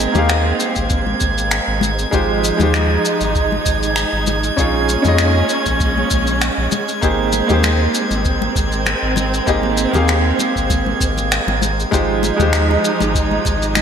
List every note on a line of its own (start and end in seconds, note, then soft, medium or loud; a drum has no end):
0.00 11.88 G#3 medium
0.00 0.10 A#3 medium
0.00 2.09 C4 medium
0.00 0.11 D#4 medium
0.00 0.11 G4 medium
0.00 0.12 G#4 medium
0.00 0.12 D#5 medium
0.00 13.82 G#6 medium
0.12 0.53 D#2 loud
0.12 2.08 A#3 medium
0.12 2.09 D#4 medium
0.12 2.09 G4 medium
0.12 high conga medium
0.12 low conga medium
0.12 shaker soft
0.17 2.10 G#4 medium
0.17 2.11 F5 medium
0.29 finger snap medium
0.29 shaker medium
0.60 shaker medium
0.75 1.14 G#1 medium
0.75 kick medium
0.75 shaker soft
0.90 kick loud
0.90 shaker medium
1.06 high conga medium
1.20 1.60 G#1 loud
1.20 kick loud
1.20 shaker medium
1.38 shaker soft
1.51 finger snap medium
1.51 shaker medium
1.68 2.06 G#1 medium
1.81 high conga medium
1.81 shaker medium
1.99 shaker soft
2.11 2.52 G#1 medium
2.11 4.55 F3 medium
2.11 2.55 G#3 medium
2.11 2.56 D#4 medium
2.11 4.55 D#4 medium
2.11 2.56 F4 medium
2.11 2.56 G4 medium
2.11 2.57 C5 medium
2.11 kick loud
2.11 shaker medium
2.44 shaker medium
2.57 2.98 D#2 loud
2.57 4.53 G#3 medium
2.57 4.54 D#4 medium
2.57 4.54 F4 medium
2.57 high conga medium
2.57 low conga medium
2.57 shaker soft
2.62 4.55 G4 medium
2.62 4.56 C5 medium
2.74 finger snap medium
2.74 shaker medium
3.05 shaker medium
3.21 3.59 G#1 medium
3.21 shaker medium
3.35 kick loud
3.35 shaker medium
3.52 high conga medium
3.66 4.05 G#1 loud
3.66 kick loud
3.66 shaker medium
3.83 shaker soft
3.96 finger snap medium
3.96 shaker medium
4.13 4.51 G#1 medium
4.27 high conga loud
4.27 shaker medium
4.44 shaker soft
4.57 4.97 A#1 medium
4.57 7.00 A#3 medium
4.57 5.00 C#4 medium
4.57 7.00 C#4 medium
4.57 5.01 D#4 medium
4.57 5.01 F4 medium
4.57 5.02 G#4 medium
4.57 5.02 C#5 medium
4.57 kick loud
4.57 shaker medium
4.89 shaker medium
5.02 5.43 F2 loud
5.02 6.98 C#4 medium
5.02 6.99 D#4 medium
5.02 7.00 F4 medium
5.02 high conga medium
5.02 low conga medium
5.02 shaker soft
5.07 7.00 G#4 medium
5.07 7.01 D#5 medium
5.18 finger snap medium
5.18 shaker medium
5.49 shaker medium
5.66 6.04 A#1 medium
5.66 kick medium
5.66 shaker medium
5.80 kick loud
5.80 shaker medium
5.98 high conga medium
6.10 6.50 A#1 loud
6.10 kick loud
6.10 shaker medium
6.27 shaker soft
6.41 finger snap medium
6.41 shaker medium
6.58 6.68 A#1 loud
6.72 high conga medium
6.72 shaker medium
6.89 shaker soft
7.01 7.42 G#1 medium
7.01 7.45 A#3 medium
7.01 11.89 C4 medium
7.01 7.46 D#4 medium
7.01 7.46 G4 medium
7.01 7.46 G#4 medium
7.01 7.47 C5 medium
7.01 kick loud
7.01 shaker medium
7.32 muted conga soft
7.32 shaker medium
7.47 7.88 D#2 loud
7.47 9.43 A#3 medium
7.47 9.43 D#4 medium
7.47 9.44 G4 medium
7.47 high conga medium
7.47 low conga medium
7.47 shaker soft
7.51 9.45 G#4 medium
7.51 9.46 C5 medium
7.64 finger snap medium
7.64 muted conga medium
7.64 shaker medium
7.95 shaker medium
8.11 8.49 G#1 medium
8.11 muted conga soft
8.11 shaker soft
8.25 kick loud
8.25 shaker soft
8.41 muted conga medium
8.41 high conga medium
8.56 8.95 G#1 loud
8.56 kick loud
8.56 shaker medium
8.72 shaker soft
8.86 finger snap medium
8.86 muted conga soft
8.86 shaker medium
9.03 9.41 G#1 medium
9.16 muted conga medium
9.16 high conga medium
9.16 shaker medium
9.34 shaker medium
9.46 9.87 G#1 medium
9.46 9.90 A#3 medium
9.46 9.90 D#4 medium
9.46 9.91 G4 medium
9.46 9.91 G#4 medium
9.46 9.92 D#5 medium
9.46 kick loud
9.46 shaker medium
9.63 muted conga soft
9.77 shaker medium
9.91 10.32 D#2 loud
9.91 11.87 A#3 medium
9.91 11.88 D#4 medium
9.91 11.89 G4 medium
9.91 muted conga medium
9.91 high conga medium
9.91 low conga medium
9.91 shaker soft
9.96 11.90 G#4 medium
9.96 11.91 F5 medium
10.08 finger snap medium
10.08 shaker medium
10.39 muted conga soft
10.39 shaker medium
10.56 10.94 G#1 medium
10.56 kick medium
10.56 shaker soft
10.70 kick loud
10.70 muted conga medium
10.70 shaker medium
10.86 high conga medium
11.01 11.40 G#1 loud
11.01 kick loud
11.01 shaker medium
11.17 muted conga soft
11.17 shaker medium
11.32 finger snap loud
11.32 shaker medium
11.47 11.85 G#1 medium
11.47 muted conga medium
11.62 high conga medium
11.62 shaker medium
11.80 shaker soft
11.91 12.32 G#1 medium
11.91 13.82 F3 medium
11.91 12.35 G#3 medium
11.91 13.82 G#3 medium
11.91 12.35 D#4 medium
11.91 13.82 D#4 medium
11.91 12.36 F4 medium
11.91 12.36 G4 medium
11.91 12.36 C5 medium
11.91 kick loud
11.91 muted conga medium
11.91 shaker medium
12.23 muted conga medium
12.23 shaker medium
12.36 12.77 D#2 loud
12.36 13.82 G#3 medium
12.36 13.82 D#4 medium
12.36 13.82 F4 medium
12.36 high conga medium
12.36 low conga medium
12.36 shaker medium
12.41 13.82 G4 medium
12.41 13.82 C5 medium
12.53 finger snap medium
12.53 shaker medium
12.71 muted conga medium
12.85 shaker medium
13.00 13.39 G#1 medium
13.00 muted conga medium
13.00 shaker soft
13.15 kick loud
13.15 shaker medium
13.31 high conga medium
13.45 13.82 G#1 loud
13.45 kick medium
13.45 muted conga medium
13.45 shaker medium
13.62 shaker soft
13.75 finger snap medium
13.75 muted conga medium
13.75 shaker medium